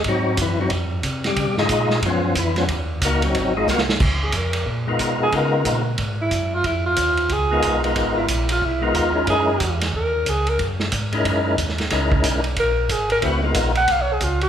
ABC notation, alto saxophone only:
X:1
M:4/4
L:1/8
Q:"Swing" 1/4=182
K:Dbmix
V:1 name="Alto saxophone"
z8 | z8 | z8 | z A B2 z3 A |
B2 z3 _F2 =F | _F =F3 A3 z | z _F2 =F _F =F3 | A3 z B2 A B |
z8 | z4 B2 A B | z3 g (3f d A F G |]